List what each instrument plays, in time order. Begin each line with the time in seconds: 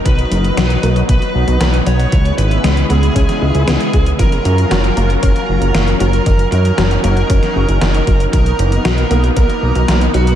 Already playing: analog synth pad D#4
0.05 analog synth bass B1, synth arpeggio sound D#3, analog synth pad F#3 B3, lead electric guitar B4, kick, closed hi-hat
0.19 closed hi-hat
0.31 analog synth bass F#1, closed hi-hat
0.44 closed hi-hat
0.57 analog synth bass B1, synth arpeggio sound F#3, snare, closed hi-hat
0.70 closed hi-hat
0.83 analog synth bass B1, synth arpeggio sound A#3, closed hi-hat
0.96 closed hi-hat
1.09 analog synth bass B1, synth arpeggio sound B3, lead electric guitar B4, kick, closed hi-hat
1.22 closed hi-hat
1.35 analog synth bass B1
1.48 analog synth bass B1, closed hi-hat
1.61 analog synth bass B1, synth arpeggio sound A#3, snare, closed hi-hat
1.74 closed hi-hat
1.86 analog synth bass B1, synth arpeggio sound F#3, lead electric guitar C#5, closed hi-hat
2.00 closed hi-hat
2.12 analog synth bass C#2, analog synth pad C#3 G#3 E4, synth arpeggio sound E3, kick, closed hi-hat
2.25 closed hi-hat
2.38 analog synth bass G#1, lead electric guitar B4, closed hi-hat
2.51 closed hi-hat
2.64 analog synth bass C#2, synth arpeggio sound G#3, snare, closed hi-hat
2.77 closed hi-hat
2.90 analog synth bass C#2, synth arpeggio sound B3, lead electric guitar G#4, closed hi-hat
3.03 closed hi-hat
3.16 analog synth bass C#2, synth arpeggio sound C#4, kick, closed hi-hat
3.29 snare, closed hi-hat
3.42 analog synth bass C#2
3.55 analog synth bass C#2, closed hi-hat
3.68 analog synth bass C#2, synth arpeggio sound B3, snare, closed hi-hat
3.80 closed hi-hat
3.93 analog synth bass C#2, synth arpeggio sound G#3, kick, closed hi-hat
4.06 closed hi-hat
4.19 analog synth bass F#1, synth arpeggio sound F3, analog synth pad F#3 C#4 F4 A#4, lead electric guitar A#4, kick, closed hi-hat
4.32 closed hi-hat
4.45 analog synth bass F#2, closed hi-hat
4.58 closed hi-hat
4.71 analog synth bass F#1, synth arpeggio sound F#3, snare, closed hi-hat
4.84 closed hi-hat
4.97 analog synth bass F#1, synth arpeggio sound A#3, closed hi-hat
5.10 closed hi-hat
5.23 analog synth bass F#1, synth arpeggio sound C#4, lead electric guitar A#4, kick, closed hi-hat
5.36 closed hi-hat
5.49 analog synth bass F#1
5.61 analog synth bass F#1, closed hi-hat
5.75 analog synth bass F#1, synth arpeggio sound A#3, snare, closed hi-hat
5.88 closed hi-hat
6.00 analog synth bass F#1, synth arpeggio sound F#3, lead electric guitar A#4, closed hi-hat
6.13 closed hi-hat
6.26 analog synth bass F#1, synth arpeggio sound D#3, analog synth pad F#3 C#4 D#4, kick, closed hi-hat
6.39 closed hi-hat
6.52 analog synth bass F#2, lead electric guitar A#4, closed hi-hat
6.65 closed hi-hat
6.78 analog synth bass F#1, synth arpeggio sound F#3, snare, closed hi-hat
6.91 closed hi-hat
7.04 analog synth bass F#1, synth arpeggio sound A#3, lead electric guitar A#4, closed hi-hat
7.17 closed hi-hat
7.30 analog synth bass F#1, synth arpeggio sound C#4, kick, closed hi-hat
7.43 snare, closed hi-hat
7.56 analog synth bass F#1
7.69 analog synth bass F#1, closed hi-hat
7.81 analog synth bass F#1, synth arpeggio sound A#3, snare, closed hi-hat
7.94 closed hi-hat
8.07 analog synth bass F#1, synth arpeggio sound F#3, kick, closed hi-hat
8.20 closed hi-hat
8.33 analog synth bass B1, synth arpeggio sound D#3, analog synth pad A#3 B3, lead electric guitar A#4, kick, closed hi-hat
8.46 closed hi-hat
8.59 analog synth bass F#1, closed hi-hat
8.72 closed hi-hat
8.85 analog synth bass B1, synth arpeggio sound F#3, snare, closed hi-hat
8.98 closed hi-hat
9.11 analog synth bass B1, synth arpeggio sound A#3, closed hi-hat
9.24 closed hi-hat
9.37 analog synth bass B1, synth arpeggio sound B3, lead electric guitar A#4, kick, closed hi-hat
9.50 closed hi-hat
9.63 analog synth bass B1
9.75 analog synth bass B1, closed hi-hat
9.88 analog synth bass B1, synth arpeggio sound A#3, snare, closed hi-hat
10.01 closed hi-hat
10.14 analog synth bass B1, synth arpeggio sound F#3, lead electric guitar F#4, closed hi-hat
10.27 closed hi-hat